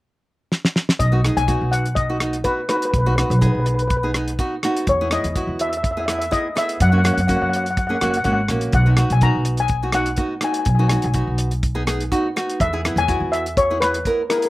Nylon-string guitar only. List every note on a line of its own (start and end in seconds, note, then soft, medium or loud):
1.12 1.19 B3 medium
1.12 1.19 D#4 medium
1.12 1.20 F#4 medium
1.25 1.40 B3 medium
1.25 1.40 D#4 medium
1.25 1.40 G#4 medium
1.48 1.85 B3 medium
1.48 1.86 D#4 medium
1.48 1.85 F#4 medium
2.10 2.17 B3 medium
2.10 2.17 D#4 medium
2.10 2.17 F#4 medium
2.20 2.36 B3 medium
2.20 2.36 D#4 medium
2.20 2.36 F#4 medium
2.44 2.60 B3 medium
2.44 2.60 D#4 medium
2.44 2.60 F#4 medium
2.69 2.92 B3 medium
2.69 2.92 D#4 medium
2.69 2.92 F#4 medium
3.06 3.14 B3 medium
3.06 3.14 D#4 medium
3.06 3.13 F#4 medium
3.18 3.33 B3 medium
3.18 3.33 D#4 medium
3.18 3.33 F#4 medium
3.41 3.79 B3 medium
3.41 3.79 D#4 medium
3.41 3.79 G#4 medium
4.03 4.10 B3 medium
4.03 4.10 D#4 medium
4.03 4.10 G#4 medium
4.16 4.31 B3 medium
4.16 4.31 D#4 medium
4.16 4.31 G#4 medium
4.39 4.54 B3 medium
4.39 4.54 D#4 medium
4.39 4.54 F#4 medium
4.64 4.86 B3 medium
4.64 4.86 D#4 medium
4.64 4.86 F#4 medium
5.01 5.08 B3 medium
5.01 5.08 E4 medium
5.01 5.07 G#4 medium
5.11 5.27 B3 medium
5.11 5.27 E4 medium
5.11 5.27 G#4 medium
5.36 5.73 B3 medium
5.36 5.73 E4 medium
5.36 5.73 F#4 medium
5.97 6.04 B3 medium
5.97 6.04 E4 medium
5.97 6.04 G#4 medium
6.08 6.23 B3 medium
6.08 6.24 E4 medium
6.08 6.23 G#4 medium
6.31 6.47 B3 medium
6.31 6.47 E4 medium
6.31 6.47 G#4 medium
6.55 6.78 B3 medium
6.55 6.78 E4 medium
6.55 6.78 G#4 medium
6.92 7.00 A#3 medium
6.92 7.00 C#4 medium
6.92 7.00 F#4 medium
7.04 7.19 A#3 medium
7.04 7.19 C#4 medium
7.04 7.20 F#4 medium
7.28 7.65 A#3 medium
7.28 7.65 C#4 medium
7.28 7.66 F#4 medium
7.89 7.96 A#3 medium
7.89 7.97 C#4 medium
7.89 7.97 G#4 medium
8.01 8.16 A#3 medium
8.01 8.16 C#4 medium
8.01 8.16 F#4 medium
8.24 8.40 A#3 medium
8.24 8.40 C#4 medium
8.24 8.40 F#4 medium
8.50 8.72 A#3 medium
8.50 8.72 C#4 medium
8.50 8.72 F#4 medium
8.86 8.93 B3 medium
8.86 8.93 D#4 medium
8.86 8.93 F#4 medium
8.98 9.13 B3 medium
8.98 9.13 D#4 medium
8.98 9.13 F#4 medium
9.22 9.59 B3 medium
9.22 9.59 D#4 medium
9.22 9.59 F#4 medium
9.83 9.90 B3 medium
9.83 9.90 D#4 medium
9.83 9.90 F#4 medium
9.93 10.09 B3 medium
9.93 10.09 D#4 medium
9.93 10.09 F#4 medium
10.17 10.33 B3 medium
10.17 10.33 D#4 medium
10.17 10.33 F#4 medium
10.41 10.64 B3 medium
10.41 10.64 D#4 medium
10.41 10.64 F#4 medium
10.79 10.86 B3 medium
10.79 10.86 D#4 medium
10.79 10.86 F#4 medium
10.91 11.06 B3 medium
10.91 11.06 D#4 medium
10.91 11.06 F#4 medium
11.14 11.51 B3 medium
11.14 11.52 D#4 medium
11.14 11.52 F#4 medium
11.75 11.82 B3 medium
11.75 11.82 D#4 medium
11.75 11.82 G#4 medium
11.87 12.02 B3 medium
11.87 12.02 D#4 medium
11.87 12.03 G#4 medium
12.12 12.27 B3 medium
12.12 12.27 D#4 medium
12.12 12.27 F#4 medium
12.36 12.58 B3 medium
12.36 12.58 D#4 medium
12.36 12.58 F#4 medium
12.73 12.80 B3 medium
12.73 12.80 E4 medium
12.73 12.80 G#4 medium
12.85 13.00 B3 medium
12.85 13.00 E4 medium
12.85 13.00 G#4 medium
13.08 13.46 B3 medium
13.08 13.45 E4 medium
13.08 13.45 F#4 medium
13.70 13.77 B3 medium
13.70 13.77 E4 medium
13.70 13.77 G#4 medium
13.82 13.97 B3 medium
13.82 13.97 E4 medium
13.82 13.97 G#4 medium
14.06 14.21 B3 medium
14.06 14.21 E4 medium
14.06 14.21 A#4 medium
14.30 14.49 B3 medium
14.30 14.49 E4 medium
14.30 14.49 G#4 medium